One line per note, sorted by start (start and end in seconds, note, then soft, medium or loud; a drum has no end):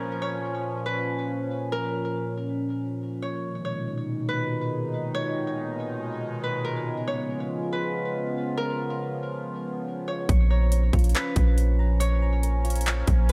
0.00 6.82 A#2 medium
0.00 3.39 F3 medium
0.00 3.39 C#4 medium
0.00 0.92 A#4 medium
0.00 0.20 C#5 loud
0.22 2.13 C#5 medium
0.86 1.78 B4 medium
1.72 3.84 A#4 loud
3.22 3.64 C#5 medium
3.43 6.83 B2 medium
3.43 6.83 D#3 medium
3.43 10.25 G#3 medium
3.43 6.83 D#4 medium
3.65 5.14 C#5 medium
4.29 6.34 B4 loud
5.15 7.06 C#5 loud
6.44 6.71 B4 medium
6.65 7.79 A#4 medium
6.86 10.26 C#3 medium
6.86 13.32 F3 medium
6.86 10.26 B3 medium
6.86 10.26 F4 medium
7.07 8.99 C#5 medium
7.73 8.63 B4 medium
8.57 10.70 A#4 loud
10.08 10.50 C#5 medium
10.29 10.91 A#1 loud
10.29 13.32 C#4 medium
10.29 11.58 C#6 loud
10.29 kick loud
10.29 closed hi-hat medium
10.50 12.00 C#5 medium
10.50 11.78 A#5 medium
10.72 12.00 C#5 medium
10.72 closed hi-hat medium
10.93 11.14 A#1 loud
10.93 12.22 F4 loud
10.93 kick medium
10.93 closed hi-hat medium
10.99 closed hi-hat medium
11.04 closed hi-hat medium
11.09 closed hi-hat medium
11.15 12.43 C#4 medium
11.15 13.20 B4 medium
11.15 clap loud
11.15 closed hi-hat medium
11.36 13.04 A#1 loud
11.36 12.64 A#3 medium
11.36 kick medium
11.36 closed hi-hat medium
11.58 closed hi-hat medium
11.79 12.21 A#5 medium
12.00 13.32 C#5 loud
12.00 13.29 C#6 loud
12.00 closed hi-hat medium
12.22 13.32 A#5 medium
12.43 13.32 A#4 medium
12.43 closed hi-hat medium
12.64 13.32 F4 medium
12.64 closed hi-hat medium
12.70 closed hi-hat medium
12.76 closed hi-hat medium
12.81 closed hi-hat medium
12.86 13.32 C#4 medium
12.86 clap loud
12.86 closed hi-hat medium
13.07 13.32 A#1 loud
13.07 13.32 A#3 medium
13.07 kick medium
13.07 closed hi-hat medium